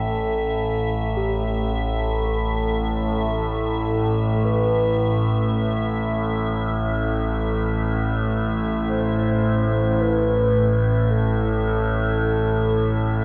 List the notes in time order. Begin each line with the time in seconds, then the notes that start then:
Already playing: A1 A2 E5
0.06 A4
1.16 G4
1.72 A4
2.25 A4
4.45 B4
8.87 C5
10.00 B4
11.11 A4
12.21 A4